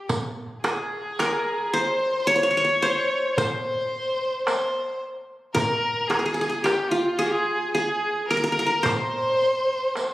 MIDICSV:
0, 0, Header, 1, 5, 480
1, 0, Start_track
1, 0, Tempo, 1094891
1, 41, Time_signature, 10, 3, 24, 8
1, 4444, End_track
2, 0, Start_track
2, 0, Title_t, "Qanun"
2, 0, Program_c, 0, 107
2, 0, Note_on_c, 0, 67, 72
2, 120, Note_off_c, 0, 67, 0
2, 280, Note_on_c, 0, 68, 71
2, 525, Note_on_c, 0, 70, 85
2, 761, Note_on_c, 0, 72, 93
2, 812, Note_off_c, 0, 68, 0
2, 995, Note_on_c, 0, 73, 97
2, 1021, Note_off_c, 0, 70, 0
2, 1021, Note_off_c, 0, 72, 0
2, 1031, Note_off_c, 0, 73, 0
2, 1033, Note_on_c, 0, 73, 75
2, 1064, Note_off_c, 0, 73, 0
2, 1066, Note_on_c, 0, 73, 77
2, 1097, Note_off_c, 0, 73, 0
2, 1099, Note_on_c, 0, 73, 65
2, 1126, Note_off_c, 0, 73, 0
2, 1128, Note_on_c, 0, 73, 77
2, 1158, Note_off_c, 0, 73, 0
2, 1159, Note_on_c, 0, 73, 65
2, 1238, Note_on_c, 0, 72, 91
2, 1264, Note_off_c, 0, 73, 0
2, 1480, Note_off_c, 0, 72, 0
2, 1482, Note_on_c, 0, 72, 82
2, 2183, Note_off_c, 0, 72, 0
2, 2431, Note_on_c, 0, 70, 90
2, 2673, Note_on_c, 0, 68, 68
2, 2712, Note_off_c, 0, 68, 0
2, 2714, Note_on_c, 0, 68, 50
2, 2741, Note_off_c, 0, 68, 0
2, 2743, Note_on_c, 0, 68, 61
2, 2778, Note_off_c, 0, 68, 0
2, 2780, Note_on_c, 0, 68, 54
2, 2809, Note_off_c, 0, 68, 0
2, 2811, Note_on_c, 0, 68, 66
2, 2845, Note_off_c, 0, 68, 0
2, 2847, Note_on_c, 0, 68, 54
2, 2911, Note_on_c, 0, 67, 75
2, 2927, Note_off_c, 0, 70, 0
2, 2937, Note_off_c, 0, 68, 0
2, 3031, Note_on_c, 0, 65, 80
2, 3151, Note_on_c, 0, 68, 92
2, 3177, Note_off_c, 0, 67, 0
2, 3394, Note_off_c, 0, 68, 0
2, 3396, Note_on_c, 0, 68, 84
2, 3621, Note_off_c, 0, 65, 0
2, 3641, Note_on_c, 0, 70, 88
2, 3668, Note_off_c, 0, 70, 0
2, 3669, Note_on_c, 0, 70, 67
2, 3697, Note_off_c, 0, 70, 0
2, 3699, Note_on_c, 0, 70, 76
2, 3734, Note_off_c, 0, 70, 0
2, 3736, Note_on_c, 0, 70, 63
2, 3764, Note_off_c, 0, 70, 0
2, 3766, Note_on_c, 0, 70, 71
2, 3797, Note_off_c, 0, 70, 0
2, 3799, Note_on_c, 0, 70, 65
2, 3871, Note_on_c, 0, 72, 82
2, 3927, Note_off_c, 0, 68, 0
2, 4295, Note_off_c, 0, 70, 0
2, 4444, Note_off_c, 0, 72, 0
2, 4444, End_track
3, 0, Start_track
3, 0, Title_t, "Violin"
3, 0, Program_c, 1, 40
3, 276, Note_on_c, 1, 68, 73
3, 761, Note_on_c, 1, 72, 82
3, 767, Note_off_c, 1, 68, 0
3, 996, Note_on_c, 1, 73, 97
3, 1003, Note_off_c, 1, 72, 0
3, 1473, Note_on_c, 1, 72, 77
3, 1480, Note_off_c, 1, 73, 0
3, 1507, Note_on_c, 1, 73, 69
3, 1513, Note_off_c, 1, 72, 0
3, 1541, Note_on_c, 1, 72, 84
3, 1547, Note_off_c, 1, 73, 0
3, 1957, Note_off_c, 1, 72, 0
3, 1960, Note_on_c, 1, 72, 68
3, 2183, Note_off_c, 1, 72, 0
3, 2435, Note_on_c, 1, 70, 89
3, 2664, Note_on_c, 1, 68, 73
3, 2670, Note_off_c, 1, 70, 0
3, 2698, Note_on_c, 1, 70, 56
3, 2705, Note_off_c, 1, 68, 0
3, 2729, Note_on_c, 1, 68, 67
3, 2735, Note_off_c, 1, 70, 0
3, 2905, Note_off_c, 1, 68, 0
3, 2907, Note_on_c, 1, 67, 72
3, 3023, Note_on_c, 1, 65, 66
3, 3030, Note_off_c, 1, 67, 0
3, 3149, Note_on_c, 1, 68, 77
3, 3156, Note_off_c, 1, 65, 0
3, 3391, Note_off_c, 1, 68, 0
3, 3394, Note_on_c, 1, 68, 72
3, 3620, Note_off_c, 1, 68, 0
3, 3633, Note_on_c, 1, 70, 72
3, 3878, Note_on_c, 1, 72, 89
3, 3885, Note_off_c, 1, 70, 0
3, 4444, Note_off_c, 1, 72, 0
3, 4444, End_track
4, 0, Start_track
4, 0, Title_t, "Darbuka"
4, 41, Note_on_c, 9, 64, 86
4, 85, Note_off_c, 9, 64, 0
4, 282, Note_on_c, 9, 63, 82
4, 326, Note_off_c, 9, 63, 0
4, 523, Note_on_c, 9, 63, 75
4, 567, Note_off_c, 9, 63, 0
4, 1003, Note_on_c, 9, 62, 26
4, 1047, Note_off_c, 9, 62, 0
4, 1480, Note_on_c, 9, 64, 92
4, 1524, Note_off_c, 9, 64, 0
4, 1718, Note_on_c, 9, 62, 24
4, 1762, Note_off_c, 9, 62, 0
4, 1959, Note_on_c, 9, 63, 72
4, 2003, Note_off_c, 9, 63, 0
4, 2438, Note_on_c, 9, 64, 89
4, 2482, Note_off_c, 9, 64, 0
4, 2677, Note_on_c, 9, 63, 73
4, 2721, Note_off_c, 9, 63, 0
4, 2918, Note_on_c, 9, 63, 65
4, 2962, Note_off_c, 9, 63, 0
4, 3643, Note_on_c, 9, 62, 23
4, 3687, Note_off_c, 9, 62, 0
4, 3761, Note_on_c, 9, 62, 22
4, 3805, Note_off_c, 9, 62, 0
4, 3882, Note_on_c, 9, 64, 92
4, 3926, Note_off_c, 9, 64, 0
4, 4126, Note_on_c, 9, 62, 22
4, 4170, Note_off_c, 9, 62, 0
4, 4364, Note_on_c, 9, 63, 54
4, 4408, Note_off_c, 9, 63, 0
4, 4444, End_track
5, 0, Start_track
5, 0, Title_t, "Riq"
5, 41, Note_on_c, 9, 54, 67
5, 85, Note_off_c, 9, 54, 0
5, 281, Note_on_c, 9, 54, 44
5, 325, Note_off_c, 9, 54, 0
5, 522, Note_on_c, 9, 54, 54
5, 565, Note_off_c, 9, 54, 0
5, 1482, Note_on_c, 9, 54, 60
5, 1526, Note_off_c, 9, 54, 0
5, 1963, Note_on_c, 9, 54, 58
5, 2007, Note_off_c, 9, 54, 0
5, 2444, Note_on_c, 9, 54, 65
5, 2488, Note_off_c, 9, 54, 0
5, 2918, Note_on_c, 9, 54, 56
5, 2962, Note_off_c, 9, 54, 0
5, 3163, Note_on_c, 9, 54, 19
5, 3207, Note_off_c, 9, 54, 0
5, 3407, Note_on_c, 9, 54, 18
5, 3451, Note_off_c, 9, 54, 0
5, 3643, Note_on_c, 9, 54, 19
5, 3687, Note_off_c, 9, 54, 0
5, 3763, Note_on_c, 9, 54, 17
5, 3806, Note_off_c, 9, 54, 0
5, 3884, Note_on_c, 9, 54, 58
5, 3927, Note_off_c, 9, 54, 0
5, 4127, Note_on_c, 9, 54, 18
5, 4171, Note_off_c, 9, 54, 0
5, 4369, Note_on_c, 9, 54, 50
5, 4413, Note_off_c, 9, 54, 0
5, 4444, End_track
0, 0, End_of_file